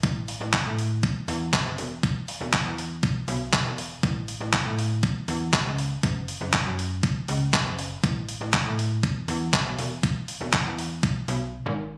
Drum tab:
HH |xoxoxoxo|xoxoxoxo|xoxoxoxo|xoxoxoxo|
CP |--x---x-|--x---x-|--x---x-|--x---x-|
BD |o-o-o-o-|o-o-o-o-|o-o-o-o-|o-o-o-o-|

HH |xoxoxoxo|xoxoxo--|
CP |--x---x-|--x-----|
BD |o-o-o-o-|o-o-o---|